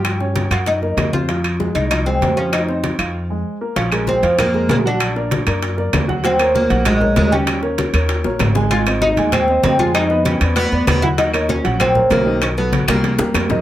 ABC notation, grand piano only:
X:1
M:4/4
L:1/8
Q:1/4=194
K:Fm
V:1 name="Grand piano"
[F,F] [Dd]2 [_G_g]2 [B,B]2 [Cc] | [F,F]2 [A,A]2 [F,F] [A,A]2 [F,F]- | [F,F] [Cc]2 [Ff]2 [A,A]2 [B,B] | [K:Bbm] [F,Ff] [A,AB]2 [F,Ff]2 [A,AB] [A,AB] [G,Gg]- |
[G,Gg] [B,B=d]2 [B,Bd]2 [B,Bd]2 [^F,^F^f] | [G,Gg] [B,Bd]2 [G,Gg]2 [B,Bd] [B,Bd] [=G,=G=g]- | [=G,=G=g] [B,Bd]2 [B,Bd]2 [B,Bd]2 [A,Aa] | [A,Aa] [Cce]2 [A,Aa]2 [Cce] [Cce] [A,Aa]- |
[A,Aa] [_C_ce]2 [Cc=d]2 [=B,=Bd]2 [^F,^F^f] | [G,Gg] [B,Bd]2 [G,Gg]2 [B,Bd] [B,Bd] [E,Ee]- | [E,Ee] [^F,^F=A]2 [=G,=GB]2 [G,GB]2 [E,Ee] |]